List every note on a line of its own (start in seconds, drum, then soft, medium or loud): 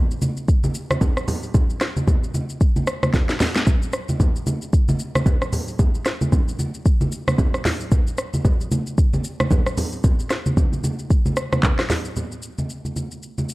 0.11 shaker medium
0.22 high conga medium
0.22 shaker loud
0.37 shaker medium
0.48 kick loud
0.48 shaker medium
0.64 high conga medium
0.64 shaker medium
0.75 shaker loud
0.90 cross-stick loud
0.90 high conga medium
0.90 shaker medium
1.01 kick loud
1.01 low conga medium
1.01 shaker medium
1.17 cross-stick medium
1.17 shaker medium
1.28 open hi-hat medium
1.28 low conga medium
1.28 shaker loud
1.43 shaker medium
1.54 kick loud
1.54 low conga medium
1.54 shaker medium
1.70 shaker medium
1.81 cross-stick medium
1.81 snare medium
1.81 shaker loud
1.96 high conga medium
1.96 shaker medium
2.07 kick loud
2.07 low conga medium
2.07 shaker medium
2.24 shaker medium
2.34 high conga medium
2.34 shaker loud
2.50 shaker medium
2.61 kick loud
2.61 shaker medium
2.76 high conga medium
2.76 shaker medium
2.87 cross-stick loud
2.87 shaker loud
3.03 cross-stick loud
3.03 high conga medium
3.03 shaker medium
3.14 kick loud
3.14 snare medium
3.14 low conga medium
3.14 shaker medium
3.29 snare medium
3.29 shaker medium
3.40 snare loud
3.40 open hi-hat medium
3.40 low conga medium
3.40 shaker loud
3.55 snare loud
3.55 shaker medium
3.67 kick loud
3.67 low conga medium
3.67 shaker medium
3.82 shaker medium
3.93 cross-stick medium
3.93 shaker medium
4.09 high conga medium
4.09 shaker medium
4.20 kick loud
4.20 low conga medium
4.20 shaker medium
4.36 shaker medium
4.47 high conga medium
4.47 shaker loud
4.62 shaker medium
4.73 kick loud
4.73 shaker medium
4.88 high conga medium
4.88 shaker medium
4.99 shaker loud
5.15 cross-stick loud
5.15 high conga medium
5.15 shaker medium
5.26 kick loud
5.26 low conga medium
5.26 shaker medium
5.42 cross-stick medium
5.42 shaker medium
5.53 open hi-hat medium
5.53 low conga medium
5.53 shaker loud
5.68 shaker medium
5.79 kick loud
5.79 low conga medium
5.79 shaker medium
5.95 shaker medium
6.05 cross-stick medium
6.05 snare medium
6.05 shaker loud
6.21 high conga medium
6.21 shaker medium
6.32 kick loud
6.32 low conga medium
6.32 shaker medium
6.48 shaker medium
6.59 high conga medium
6.59 shaker loud
6.74 shaker medium
6.86 kick loud
6.86 shaker medium
7.01 high conga medium
7.01 shaker medium
7.12 shaker loud
7.28 cross-stick loud
7.28 high conga medium
7.28 shaker medium
7.38 kick loud
7.38 low conga medium
7.38 shaker medium
7.54 cross-stick medium
7.54 shaker medium
7.65 snare medium
7.65 open hi-hat medium
7.65 low conga medium
7.65 shaker medium
7.80 shaker medium
7.92 kick loud
7.92 low conga medium
7.92 shaker medium
8.07 shaker medium
8.18 cross-stick medium
8.18 shaker loud
8.34 high conga medium
8.34 shaker medium
8.45 kick loud
8.45 low conga medium
8.45 shaker medium
8.61 shaker medium
8.72 high conga medium
8.72 shaker loud
8.87 shaker medium
8.98 kick loud
8.98 shaker medium
9.13 high conga medium
9.13 shaker medium
9.24 shaker loud
9.40 cross-stick loud
9.40 high conga medium
9.40 shaker medium
9.51 kick loud
9.51 low conga medium
9.51 shaker medium
9.66 cross-stick medium
9.66 shaker medium
9.78 open hi-hat medium
9.78 low conga medium
9.78 shaker loud
9.93 shaker medium
10.04 kick loud
10.04 low conga medium
10.04 shaker loud
10.19 shaker medium
10.30 cross-stick medium
10.30 snare medium
10.30 shaker loud
10.46 high conga medium
10.46 shaker medium
10.57 kick loud
10.57 low conga medium
10.57 shaker medium
10.73 high conga medium
10.73 shaker medium
10.84 high conga medium
10.84 shaker loud
10.99 shaker medium
11.10 kick loud
11.10 shaker medium
11.26 high conga medium
11.26 shaker medium
11.37 cross-stick medium
11.37 shaker loud
11.52 cross-stick loud
11.52 high conga medium
11.52 shaker medium
11.63 kick loud
11.63 clap loud
11.63 low conga medium
11.63 shaker medium
11.79 cross-stick medium
11.79 snare medium
11.79 shaker medium
11.90 snare medium
11.90 open hi-hat medium
11.90 low conga medium
11.90 shaker loud
12.05 shaker medium
12.16 low conga medium
12.16 shaker medium
12.32 shaker medium
12.42 shaker medium
12.58 high conga medium
12.58 shaker medium
12.70 shaker medium
12.85 high conga medium
12.85 shaker medium
12.96 high conga medium
12.96 shaker loud
13.11 shaker medium
13.23 shaker medium
13.38 high conga medium
13.38 shaker medium
13.49 shaker loud